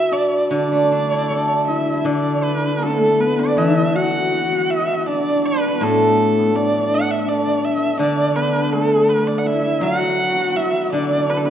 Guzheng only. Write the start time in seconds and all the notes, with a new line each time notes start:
0.51 D3
0.72 A3
0.92 D4
1.12 E4
1.30 A4
2.04 D3
3.57 E3
5.81 A2
7.99 D3
9.81 F#3
10.92 D3